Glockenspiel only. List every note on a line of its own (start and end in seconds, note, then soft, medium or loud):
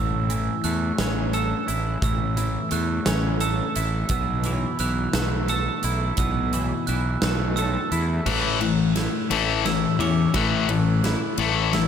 0.00 0.64 E6 medium
0.64 1.33 F#6 medium
1.34 2.03 E6 medium
2.04 2.73 E6 medium
2.72 3.42 F#6 medium
3.41 4.09 E6 medium
4.10 4.80 E6 medium
4.80 5.50 F#6 medium
5.49 6.17 E6 medium
6.19 6.88 E6 medium
6.87 7.57 F#6 medium
7.56 8.26 E6 medium
8.26 8.96 F#6 medium
9.66 10.00 E6 medium
10.00 10.35 D6 medium
10.36 11.05 F#6 medium
11.73 11.88 E6 medium